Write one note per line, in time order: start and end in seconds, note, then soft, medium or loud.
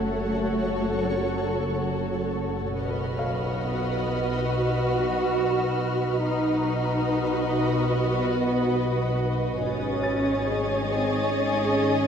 0.00 2.71 F#1 medium
0.00 2.71 F#1 soft
0.00 1.00 A3 soft
0.00 2.71 F#4 soft
0.00 2.28 A4 soft
0.00 2.71 A4 soft
0.00 2.71 C#5 soft
0.00 2.28 A5 soft
0.00 2.28 C#6 soft
0.00 1.43 F#6 soft
0.00 0.57 G#6 soft
1.04 2.32 F#3 soft
2.75 6.22 B1 medium
2.75 6.18 B1 soft
2.75 6.18 F#4 soft
2.75 6.19 F#4 soft
2.75 6.18 B4 soft
2.75 6.20 B4 soft
2.75 6.18 D#5 soft
2.75 6.21 D#5 soft
2.75 9.16 B5 soft
2.75 8.31 F6 soft
3.19 5.75 F5 soft
3.62 4.46 B3 soft
4.51 6.22 F#4 medium
6.22 9.58 B1 soft
6.22 9.58 B1 medium
6.22 7.89 D#4 medium
6.22 9.58 F#4 soft
6.22 9.59 F#4 soft
6.22 9.58 B4 soft
6.22 9.59 B4 soft
6.22 9.58 D#5 soft
7.93 9.20 B3 medium
9.62 12.07 G#1 soft
9.62 12.07 G#1 medium
9.62 10.86 C#4 medium
9.62 12.07 G#4 medium
9.62 12.07 G#4 soft
9.62 12.07 C#5 medium
9.62 12.07 D#5 soft
9.62 12.07 C#6 soft
9.62 12.07 D#6 soft
9.62 12.07 A6 soft
10.03 12.07 A6 soft
10.91 11.33 C4 medium
11.34 12.07 C#4 medium